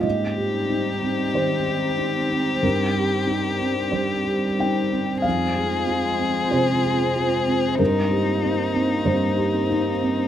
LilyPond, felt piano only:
\new Staff \with { instrumentName = "Felt piano" } { \time 4/4 \key aes \major \tempo 4 = 94 << { ees''2 c''2 | bes'2 c''4 g''4 | f''2 c''2 | bes'2 c''4 r4 | } \\ { aes,8 g'8 ees'8 c'8 ees8 g'8 ees'8 c'8 | g,8 g'8 ees'8 c'8 g8 g'8 ees'8 c'8 | f,8 aes'8 f'8 c'8 c8 aes'8 f'8 c'8 | g,8 g'8 ees'8 c'8 g,8 g'8 ees'8 c'8 | } >> }